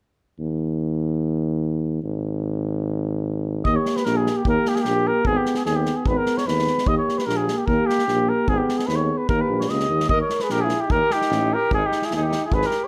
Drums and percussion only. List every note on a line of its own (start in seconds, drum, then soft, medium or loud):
3.65 kick medium
3.86 snare soft
3.96 snare soft
4.05 snare soft
4.26 snare soft
4.45 kick medium
4.65 snare soft
4.76 snare soft
4.85 snare soft
5.25 kick medium
5.45 snare soft
5.54 snare soft
5.66 snare soft
5.86 snare soft
6.06 kick medium
6.26 snare soft
6.37 snare soft
6.48 snare soft
6.58 snare soft
6.67 snare soft
6.78 snare soft
6.86 kick medium
7.09 snare soft
7.18 snare soft
7.29 snare soft
7.48 snare soft
7.68 kick medium
7.89 snare soft
7.98 snare soft
8.08 snare soft
8.48 kick medium
8.69 snare soft
8.79 snare soft
8.89 snare soft
9.29 kick medium
9.61 snare soft
9.68 snare soft
9.79 snare soft
10.00 snare soft
10.09 kick medium
10.29 snare soft
10.39 snare soft
10.49 snare soft
10.69 snare soft
10.90 kick medium
11.10 snare soft
11.21 snare soft
11.32 snare soft
11.71 kick medium
11.92 snare soft
12.02 snare soft
12.11 snare soft
12.32 snare soft
12.52 kick medium
12.62 snare soft
12.71 snare soft